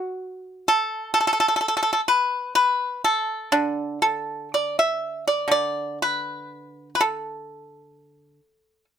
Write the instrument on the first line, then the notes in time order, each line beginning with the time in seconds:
pipa
Already playing: F#4
0.68 A4
1.14 A4
1.20 A4
1.27 A4
1.33 A4
1.40 A4
1.48 A4
1.56 A4
1.61 A4
1.68 A4
1.77 A4
1.83 A4
1.93 A4
2.08 B4
2.55 B4
3.04 A4
3.52 D3 D4
4.02 A4
4.54 D5
4.79 E5
5.27 D5
5.48 D3 D5
6.02 B4
6.95 B4
7.01 A4